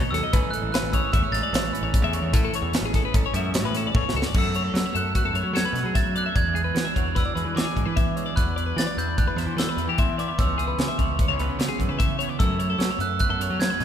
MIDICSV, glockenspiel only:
0, 0, Header, 1, 2, 480
1, 0, Start_track
1, 0, Key_signature, 3, "major"
1, 0, Tempo, 402414
1, 404, Time_signature, 5, 2, 24, 8
1, 16514, End_track
2, 0, Start_track
2, 0, Title_t, "Glockenspiel"
2, 0, Program_c, 0, 9
2, 126, Note_on_c, 0, 88, 81
2, 603, Note_on_c, 0, 90, 75
2, 638, Note_off_c, 0, 88, 0
2, 849, Note_off_c, 0, 90, 0
2, 863, Note_on_c, 0, 90, 73
2, 1094, Note_off_c, 0, 90, 0
2, 1107, Note_on_c, 0, 88, 74
2, 1324, Note_off_c, 0, 88, 0
2, 1338, Note_on_c, 0, 88, 83
2, 1450, Note_off_c, 0, 88, 0
2, 1577, Note_on_c, 0, 93, 89
2, 4648, Note_off_c, 0, 93, 0
2, 5228, Note_on_c, 0, 88, 88
2, 5681, Note_off_c, 0, 88, 0
2, 5696, Note_on_c, 0, 88, 76
2, 5921, Note_on_c, 0, 90, 72
2, 5927, Note_off_c, 0, 88, 0
2, 6156, Note_off_c, 0, 90, 0
2, 6170, Note_on_c, 0, 90, 86
2, 6636, Note_on_c, 0, 92, 85
2, 6652, Note_off_c, 0, 90, 0
2, 7113, Note_on_c, 0, 93, 81
2, 7125, Note_off_c, 0, 92, 0
2, 7357, Note_off_c, 0, 93, 0
2, 7366, Note_on_c, 0, 90, 82
2, 7587, Note_on_c, 0, 92, 92
2, 7604, Note_off_c, 0, 90, 0
2, 8558, Note_on_c, 0, 88, 85
2, 8577, Note_off_c, 0, 92, 0
2, 9027, Note_on_c, 0, 86, 75
2, 9048, Note_off_c, 0, 88, 0
2, 9701, Note_off_c, 0, 86, 0
2, 9972, Note_on_c, 0, 90, 84
2, 10428, Note_off_c, 0, 90, 0
2, 10474, Note_on_c, 0, 93, 87
2, 10581, Note_off_c, 0, 93, 0
2, 10713, Note_on_c, 0, 91, 81
2, 10952, Note_on_c, 0, 90, 82
2, 10960, Note_off_c, 0, 91, 0
2, 11439, Note_on_c, 0, 88, 71
2, 11447, Note_off_c, 0, 90, 0
2, 11917, Note_on_c, 0, 84, 72
2, 11931, Note_off_c, 0, 88, 0
2, 12163, Note_off_c, 0, 84, 0
2, 12163, Note_on_c, 0, 86, 70
2, 12406, Note_off_c, 0, 86, 0
2, 12407, Note_on_c, 0, 88, 83
2, 12513, Note_off_c, 0, 88, 0
2, 12633, Note_on_c, 0, 88, 72
2, 13308, Note_off_c, 0, 88, 0
2, 14781, Note_on_c, 0, 88, 85
2, 15236, Note_off_c, 0, 88, 0
2, 15251, Note_on_c, 0, 88, 85
2, 15514, Note_off_c, 0, 88, 0
2, 15521, Note_on_c, 0, 90, 79
2, 15732, Note_off_c, 0, 90, 0
2, 15746, Note_on_c, 0, 90, 97
2, 16222, Note_on_c, 0, 92, 88
2, 16249, Note_off_c, 0, 90, 0
2, 16514, Note_off_c, 0, 92, 0
2, 16514, End_track
0, 0, End_of_file